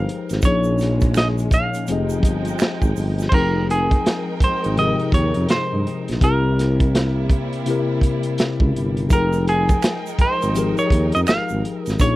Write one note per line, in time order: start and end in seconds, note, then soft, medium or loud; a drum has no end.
0.00 0.36 F3 medium
0.00 0.40 F3 medium
0.00 0.40 G#3 medium
0.00 0.36 D#4 medium
0.00 0.40 D#4 medium
0.00 0.37 G4 medium
0.00 0.37 G#4 medium
0.00 0.40 A#4 medium
0.00 0.45 B4 medium
0.00 0.41 C5 medium
0.00 0.45 F5 medium
0.00 0.40 G5 medium
0.09 closed hi-hat medium
0.29 0.42 G#1 medium
0.29 snare soft
0.29 closed hi-hat soft
0.29 shaker soft
0.42 1.70 A#1 loud
0.42 1.81 A#2 medium
0.42 1.81 F3 medium
0.42 1.85 G#3 medium
0.42 1.86 A#3 medium
0.42 1.85 C#4 medium
0.42 1.82 C#4 medium
0.42 1.82 D#4 medium
0.42 1.17 C#5 medium
0.42 kick loud
0.42 closed hi-hat medium
0.42 shaker medium
0.46 1.82 G#4 medium
0.46 1.83 C#5 medium
0.64 shaker soft
0.78 snare soft
0.78 closed hi-hat medium
0.78 shaker soft
1.01 kick medium
1.01 closed hi-hat soft
1.01 shaker soft
1.14 1.27 D#5 medium
1.14 finger snap medium
1.14 snare medium
1.14 closed hi-hat medium
1.14 shaker medium
1.38 closed hi-hat soft
1.38 shaker soft
1.51 2.93 F5 medium
1.51 kick loud
1.51 closed hi-hat medium
1.51 shaker soft
1.74 closed hi-hat soft
1.74 shaker soft
1.87 2.25 F1 loud
1.87 3.30 F3 medium
1.87 3.25 F3 medium
1.87 3.30 G#3 medium
1.87 3.26 C4 medium
1.87 3.30 D#4 medium
1.87 3.27 G4 medium
1.87 3.30 G5 medium
1.87 closed hi-hat medium
1.87 shaker medium
1.91 3.27 G#4 medium
1.91 3.28 D#5 medium
2.09 closed hi-hat soft
2.09 shaker soft
2.23 2.56 G1 medium
2.23 kick medium
2.23 closed hi-hat medium
2.23 shaker soft
2.45 closed hi-hat soft
2.45 shaker soft
2.59 finger snap medium
2.59 snare loud
2.59 closed hi-hat medium
2.59 shaker medium
2.82 2.95 G#1 medium
2.82 kick medium
2.82 shaker soft
2.96 3.29 G1 medium
2.96 open hi-hat soft
2.96 shaker soft
3.18 snare soft
3.18 closed hi-hat soft
3.18 shaker soft
3.29 3.97 F1 medium
3.29 6.18 F3 medium
3.29 4.70 F3 medium
3.29 6.18 G#3 medium
3.29 4.70 C4 medium
3.29 6.18 D#4 medium
3.29 6.18 A#4 medium
3.29 3.33 C5 medium
3.29 6.19 G5 medium
3.29 kick loud
3.29 crash medium
3.34 4.71 D#4 medium
3.34 4.72 G#4 medium
3.34 3.67 A#4 medium
3.34 4.72 A#4 medium
3.34 4.71 G5 medium
3.70 4.44 G#4 medium
3.70 closed hi-hat medium
3.91 kick medium
3.91 closed hi-hat soft
4.06 snare medium
4.06 closed hi-hat medium
4.40 4.50 G#1 soft
4.40 4.78 C5 medium
4.40 kick medium
4.40 closed hi-hat medium
4.64 4.96 G#1 medium
4.64 closed hi-hat soft
4.76 6.15 C3 medium
4.76 6.14 F3 medium
4.76 6.15 D#4 medium
4.76 6.16 G4 medium
4.76 6.16 G#4 medium
4.76 5.11 D#5 medium
4.76 closed hi-hat medium
4.80 6.16 A#4 medium
4.99 closed hi-hat soft
5.12 5.33 D#2 medium
5.12 5.47 C#5 medium
5.12 kick medium
5.12 closed hi-hat medium
5.34 5.48 F2 medium
5.34 closed hi-hat soft
5.49 5.59 G2 soft
5.49 6.18 C5 medium
5.49 snare loud
5.49 closed hi-hat medium
5.73 5.84 G2 medium
5.87 closed hi-hat medium
6.08 6.21 A#1 medium
6.08 snare soft
6.08 closed hi-hat soft
6.21 7.48 C2 loud
6.21 7.59 C3 medium
6.21 9.08 C3 medium
6.21 9.07 G3 medium
6.21 9.07 A#3 medium
6.21 7.59 C4 medium
6.21 9.07 E4 medium
6.21 7.60 E4 medium
6.21 7.61 G4 medium
6.21 7.63 A#4 medium
6.21 kick loud
6.21 closed hi-hat medium
6.25 7.61 A#4 medium
6.59 snare soft
6.59 closed hi-hat medium
6.80 kick medium
6.80 closed hi-hat soft
6.95 snare loud
6.95 closed hi-hat medium
7.30 kick medium
7.30 closed hi-hat medium
7.53 closed hi-hat soft
7.66 9.04 C3 medium
7.66 9.04 C4 medium
7.66 9.05 E4 medium
7.66 9.05 G4 medium
7.66 closed hi-hat medium
7.70 9.06 A#4 medium
8.01 kick medium
8.01 closed hi-hat medium
8.23 closed hi-hat soft
8.38 snare loud
8.38 closed hi-hat medium
8.60 8.73 C#2 medium
8.60 kick medium
8.76 9.12 G1 medium
8.76 closed hi-hat medium
8.97 closed hi-hat soft
9.10 9.75 F1 loud
9.10 10.48 F3 medium
9.10 11.97 F3 medium
9.10 11.97 G#3 medium
9.10 11.97 D#4 medium
9.10 10.49 D#4 medium
9.10 10.50 G#4 medium
9.10 11.97 A#4 medium
9.10 9.45 A#4 medium
9.10 11.97 G5 medium
9.10 10.49 G5 medium
9.10 kick loud
9.10 closed hi-hat medium
9.10 shaker medium
9.15 10.50 A#4 medium
9.33 closed hi-hat soft
9.33 shaker soft
9.47 10.22 G#4 medium
9.47 closed hi-hat medium
9.69 kick medium
9.69 closed hi-hat soft
9.69 shaker medium
9.82 finger snap medium
9.82 snare loud
9.82 closed hi-hat medium
9.82 shaker medium
10.06 closed hi-hat soft
10.06 shaker soft
10.19 10.28 G#1 soft
10.19 10.78 C5 medium
10.19 kick loud
10.19 closed hi-hat medium
10.42 10.74 G#1 medium
10.42 closed hi-hat soft
10.42 shaker soft
10.54 11.93 F3 medium
10.54 11.93 D#4 medium
10.54 11.94 G4 medium
10.54 11.94 G#4 medium
10.54 closed hi-hat medium
10.54 shaker medium
10.59 11.95 A#4 medium
10.77 11.14 C#5 medium
10.77 closed hi-hat soft
10.77 shaker soft
10.90 11.11 D#2 medium
10.90 kick medium
10.90 closed hi-hat medium
11.12 11.27 F2 medium
11.12 11.20 D#5 medium
11.12 closed hi-hat soft
11.12 shaker soft
11.27 11.38 G#1 soft
11.27 11.83 F5 medium
11.27 finger snap medium
11.27 snare loud
11.27 closed hi-hat medium
11.27 shaker medium
11.49 11.63 G#1 medium
11.49 shaker soft
11.65 closed hi-hat medium
11.83 12.01 D#5 medium
11.83 closed hi-hat soft
11.83 shaker soft
11.87 11.99 G#1 medium
11.87 snare soft
11.99 12.16 A#1 loud
11.99 12.16 A#2 medium
11.99 12.16 F3 medium
11.99 12.16 G#3 medium
11.99 12.16 A#3 medium
11.99 12.16 C#4 medium
11.99 12.16 D#4 medium
11.99 12.16 G#4 medium
11.99 12.16 C#5 loud
11.99 kick medium
11.99 closed hi-hat medium
11.99 shaker medium
12.04 12.16 C#5 medium